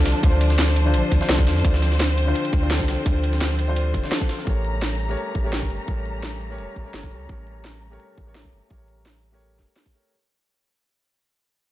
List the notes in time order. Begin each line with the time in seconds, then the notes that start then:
Already playing: D3 F3 D4 F4 A4 C5
0.06 C2, snare, closed hi-hat, ride
0.21 D2 D3 D4 F4, kick, closed hi-hat, ride
0.26 C5
0.41 closed hi-hat, ride
0.50 snare
0.58 snare, closed hi-hat, ride
0.68 snare
0.76 closed hi-hat, ride
0.84 D3 D4 F4 C5
0.94 A1, closed hi-hat, ride
1.12 D2, kick, closed hi-hat, ride
1.20 D3 D4 F4 C5, snare
1.28 C2 D3 D4 F4 A4, snare, closed hi-hat, open hi-hat
1.39 kick
1.47 F2, snare, closed hi-hat, ride
1.56 snare
1.62 D2 D3 C4 D4 F4, kick, closed hi-hat, ride
1.67 C5
1.74 snare
1.82 snare, closed hi-hat, ride
1.92 snare
2.00 snare, closed hi-hat, ride
2.09 ride
2.18 closed hi-hat, ride
2.26 D3 D4 F4 C5
2.35 closed hi-hat, ride
2.45 ride
2.53 D2, kick, closed hi-hat, ride
2.61 D3 D4 F4 C5
2.69 D3 D4 F4 A4, snare, closed hi-hat, ride
2.80 kick, snare
2.88 C2, snare, closed hi-hat, ride
3.04 D2 D3 D4 F4, kick, closed hi-hat, ride
3.08 C5
3.23 closed hi-hat, ride
3.33 snare
3.41 snare, closed hi-hat, ride
3.51 snare
3.59 closed hi-hat, ride
3.67 D3 D4 F4 C5
3.76 closed hi-hat, ride
3.94 D1, kick, closed hi-hat, ride
4.02 D3 D4 F4 C5, snare
4.11 D3 D4 F4 A4, snare, closed hi-hat, open hi-hat
4.21 kick
4.29 snare, closed hi-hat, ride
4.39 snare
4.45 A1 G3 A3 C#4 G4 A#4 A#5, kick, closed hi-hat
4.49 C#5
4.65 closed hi-hat
4.82 snare, closed hi-hat
5.00 closed hi-hat
5.08 A3 G4 A#4 C#5
5.17 closed hi-hat
5.35 A1, kick, closed hi-hat
5.44 A3 G4 A#4 C#5
5.52 A3 G4 A#4 C#5, snare, closed hi-hat
5.62 kick
5.70 G1, closed hi-hat
5.86 A1 A3 G4 A#4, kick, closed hi-hat
5.91 C#5
6.06 closed hi-hat
6.23 snare, closed hi-hat
6.41 closed hi-hat
6.49 A3 G4 A#4 C#5
6.58 E1, closed hi-hat
6.76 A1, kick, closed hi-hat
6.85 A3 G4 A#4 C#5
6.93 G1 A3 G4 A#4 C#5, snare, closed hi-hat
7.03 kick
7.11 C#2, closed hi-hat
7.27 A1 A3 G4 A#4, kick, closed hi-hat
7.32 C#5
7.47 closed hi-hat
7.65 snare, closed hi-hat
7.82 closed hi-hat
7.90 A3 G4 A#4 C#5
8.00 closed hi-hat
8.18 A1, kick, closed hi-hat
8.26 A3 G4 A#4 C#5
8.34 A3 G4 A#4, snare, closed hi-hat
8.45 kick
8.53 G1, closed hi-hat
8.68 A1 A3 G4 A#4, kick, closed hi-hat
8.73 C#5
8.88 closed hi-hat
9.06 snare, closed hi-hat
9.23 closed hi-hat
9.32 A3 G4 A#4 C#5
9.41 closed hi-hat
9.59 E1, kick, snare, closed hi-hat
9.76 snare, closed hi-hat
9.86 kick
9.93 A3 G4 A#4 C#5, closed hi-hat